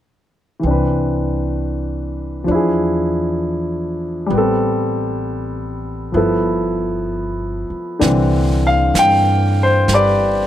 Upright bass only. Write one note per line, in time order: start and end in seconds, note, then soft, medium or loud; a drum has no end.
0.63 2.45 C2 medium
2.48 4.27 E2 medium
4.30 6.11 A1 medium
6.14 7.66 G1 medium
7.70 muted upright bass stroke soft
8.02 8.91 C2 medium
8.94 9.84 G2 medium
9.88 10.47 G1 medium